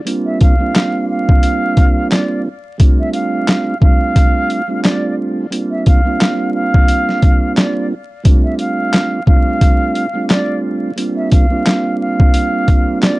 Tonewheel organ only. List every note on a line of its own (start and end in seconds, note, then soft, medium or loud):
0.05 0.55 G3 medium
0.05 0.55 A#3 medium
0.05 0.56 C4 medium
0.05 0.56 D4 medium
0.05 0.56 F4 loud
0.59 0.73 G3 medium
0.59 0.74 A#3 medium
0.59 0.74 C4 medium
0.59 0.75 D4 medium
0.59 0.76 F4 loud
0.74 2.47 G3 medium
0.74 2.48 A#3 medium
0.74 2.48 C4 medium
0.74 2.49 D4 medium
0.74 2.49 F4 loud
2.78 3.74 G3 medium
2.78 3.74 A3 medium
2.78 3.75 C4 medium
2.78 3.75 D4 medium
2.78 3.75 F4 loud
3.80 4.61 G3 medium
3.80 4.61 A3 medium
3.80 4.62 C4 medium
3.80 4.62 D4 medium
3.80 4.62 F4 loud
4.68 5.46 G3 medium
4.68 5.46 A3 medium
4.68 5.46 C4 medium
4.68 5.47 D4 medium
4.68 5.47 F4 loud
5.51 6.00 G3 medium
5.51 6.01 A#3 medium
5.51 6.01 C4 medium
5.51 6.01 D4 medium
5.51 6.02 F4 medium
6.04 6.19 G3 medium
6.04 6.19 A#3 medium
6.04 6.20 C4 medium
6.04 6.21 D4 medium
6.04 6.22 F4 loud
6.20 7.93 G3 medium
6.20 7.93 A#3 medium
6.20 7.94 C4 medium
6.20 7.94 D4 medium
6.20 7.94 F4 loud
8.23 9.19 G3 medium
8.23 9.20 A3 medium
8.23 9.20 C4 medium
8.23 9.21 D4 medium
8.23 9.21 F4 loud
9.26 10.06 G3 medium
9.26 10.07 A3 medium
9.26 10.07 C4 medium
9.26 10.08 D4 medium
9.26 10.08 F4 loud
10.13 10.91 G3 medium
10.13 10.92 A3 medium
10.13 10.92 C4 medium
10.13 10.92 D4 medium
10.13 10.93 F4 loud
10.96 11.46 G3 medium
10.96 11.46 A#3 medium
10.96 11.47 C4 medium
10.96 11.47 D4 medium
10.96 11.47 F4 loud
11.50 11.64 G3 medium
11.50 11.64 A#3 medium
11.50 11.65 C4 medium
11.50 11.66 D4 medium
11.50 11.67 F4 loud
11.65 13.19 G3 medium
11.65 13.19 A#3 medium
11.65 13.19 C4 medium
11.65 13.19 D4 medium
11.65 13.19 F4 loud